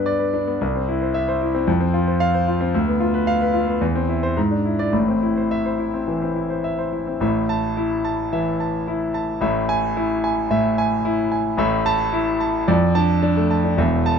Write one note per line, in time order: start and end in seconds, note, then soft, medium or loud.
0.00 0.57 G2 medium
0.00 0.47 B3 medium
0.00 0.34 D4 medium
0.00 0.14 B4 medium
0.06 0.28 D5 medium
0.19 0.41 B4 medium
0.34 0.55 D4 medium
0.47 0.60 B3 medium
0.61 1.65 C2 medium
0.75 0.96 C4 medium
0.88 1.09 E4 medium
1.02 1.23 C5 medium
1.14 1.36 E5 medium
1.28 1.49 C5 medium
1.42 1.62 E4 medium
1.55 1.68 C4 medium
1.67 2.71 F2 medium
1.81 2.02 C4 medium
1.94 2.15 F4 medium
2.07 2.29 C5 medium
2.20 2.42 F5 loud
2.34 2.55 C5 medium
2.48 2.69 F4 medium
2.61 2.74 C4 medium
2.74 3.78 D2 medium
2.88 3.08 B3 medium
3.00 3.22 F4 medium
3.14 3.35 B4 medium
3.27 3.48 F5 loud
3.41 3.62 B4 medium
3.54 3.76 F4 medium
3.67 3.81 B3 medium
3.81 4.35 E2 medium
3.95 4.17 C4 medium
4.09 4.31 E4 medium
4.23 4.37 C5 medium
4.37 4.92 G#2 medium
4.51 4.73 D4 medium
4.65 4.88 E4 medium
4.79 4.93 D5 medium
4.92 6.04 A1 medium
4.92 6.04 A2 medium
5.08 5.31 C4 medium
5.23 5.45 E4 medium
5.37 5.60 C5 medium
5.51 5.74 E5 medium
5.66 5.88 C5 medium
5.79 6.02 E4 medium
5.94 6.17 C4 medium
6.08 6.31 E3 medium
6.22 6.45 C4 medium
6.36 6.59 E4 medium
6.50 6.73 C5 medium
6.64 6.87 E5 medium
6.79 7.02 C5 medium
6.93 7.16 E4 medium
7.07 7.21 C4 medium
7.20 8.29 A1 medium
7.20 8.29 A2 medium
7.20 7.66 E5 medium
7.49 7.94 A5 medium
7.77 8.22 E4 medium
8.04 8.49 A5 medium
8.33 8.55 E3 medium
8.33 8.76 E5 medium
8.60 9.04 A5 medium
8.88 9.31 E4 medium
9.14 9.42 A5 medium
9.41 10.47 A1 medium
9.41 10.48 A2 medium
9.41 9.86 E5 medium
9.69 10.13 G#5 loud
9.97 10.40 E4 medium
10.24 10.67 G#5 medium
10.51 11.56 A2 medium
10.51 10.94 E5 medium
10.78 11.21 G#5 medium
11.05 11.48 E4 medium
11.32 11.59 G#5 medium
11.57 12.63 A1 medium
11.57 12.64 A2 loud
11.57 12.02 E5 medium
11.86 12.29 A5 loud
12.13 12.56 E4 medium
12.40 12.68 A5 medium
12.68 13.74 F2 loud
12.68 13.11 D5 medium
12.95 13.17 D4 medium
12.95 13.39 A5 loud
13.22 13.44 D4 medium
13.37 13.58 A3 medium
13.51 13.78 A5 medium
13.64 13.78 D4 medium
13.77 14.19 E1 medium
13.77 14.19 E2 medium
13.77 14.19 E5 medium
14.06 14.19 A5 loud